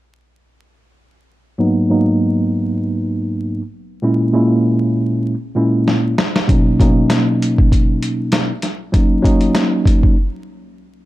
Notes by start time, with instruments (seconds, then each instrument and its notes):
1.58 tine electric piano G#2 F#3 A#3 B3 D#4
1.89 tine electric piano G#2 F#3 A#3 B3 D#4
4.02 tine electric piano A#2 G#3 A#3 C#4 E4
4.33 tine electric piano A#2 G#3 A#3 C#4 E4
5.55 tine electric piano A#2 G#3 A#3 C#4 E4
5.88 snare
6.18 snare
6.36 snare
6.47 tine electric piano B2 F#3 A#3 C#4 D#4, kick, closed hi-hat
6.79 tine electric piano B2 F#3 A#3 C#4 D#4, kick, closed hi-hat
7.10 snare, closed hi-hat
7.42 closed hi-hat
7.58 kick
7.72 kick, closed hi-hat
8.02 closed hi-hat
8.32 snare, closed hi-hat
8.62 snare, closed hi-hat
8.92 tine electric piano F#3 A#3 C#4 D#4, kick, closed hi-hat
9.22 tine electric piano F#3 A#3 C#4 D#4, kick, closed hi-hat
9.41 closed hi-hat
9.55 snare, closed hi-hat
9.85 kick, closed hi-hat
10.03 kick